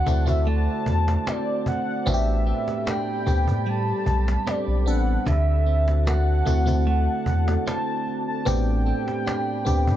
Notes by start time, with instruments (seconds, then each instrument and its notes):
Already playing: clean electric guitar D3 C4 F#4, ambient pad F#4 C5 D5 A5, soft synth lead F#5
0.06 sub bass D2, fm electric piano A3 C4 E4 F#4, cajon bass
0.25 fm electric piano A3 C4 E4 F#4, soft synth lead E5, cajon bass
0.47 clean electric guitar A3, soft synth lead A5
0.86 sub bass E2, cajon bass
1.08 cajon slap
1.27 clean electric guitar C4, soft synth lead D5, cajon slap
1.66 soft synth lead F#5, cajon bass
2.06 sub bass A1, clean electric guitar A2, fm electric piano B3 C4 D4 F#4, ambient pad G4 A4 B5, soft synth lead E5, cajon bass
2.14 fm electric piano G4
2.47 clean electric guitar C4
2.68 cajon slap
2.87 clean electric guitar D4, soft synth lead G5, cajon slap
3.26 sub bass D2, fm electric piano B3 C4 D4 G4, cajon bass
3.47 sub bass A2, cajon bass
3.67 clean electric guitar G3, soft synth lead A5, cajon slap
4.06 sub bass B1, cajon bass
4.17 cajon slap
4.28 cajon slap
4.37 cajon slap
4.47 clean electric guitar C4, soft synth lead D5, cajon slap
4.67 sub bass B1
4.86 sub bass A1, fm electric piano B3 C4 D4 A4, soft synth lead F#5, cajon slap
5.26 sub bass D2, clean electric guitar D3, ambient pad F#4 A5, soft synth lead E5, cajon bass
5.67 clean electric guitar C4
5.88 cajon slap
6.07 clean electric guitar F#4, soft synth lead F#5, cajon slap
6.45 sub bass D2, fm electric piano A3 C4 E4 F#4, cajon bass
6.66 fm electric piano A3 C4 E4 F#4, cajon bass
6.87 clean electric guitar A3, soft synth lead F#5, cajon slap
7.26 sub bass E2, cajon bass
7.37 cajon slap
7.48 cajon slap
7.57 cajon slap
7.67 clean electric guitar C4, soft synth lead A5, cajon slap
8.07 cajon slap
8.27 soft synth lead A5, cajon slap
8.45 sub bass A1, clean electric guitar A2, fm electric piano B3 C4 D4 G4, ambient pad G4 D5 B5, soft synth lead G5, cajon bass
8.86 clean electric guitar C4
9.08 cajon slap
9.26 clean electric guitar D4, cajon slap
9.65 sub bass D2, fm electric piano B3 C4 D4 G4, cajon bass
9.87 sub bass A2, cajon bass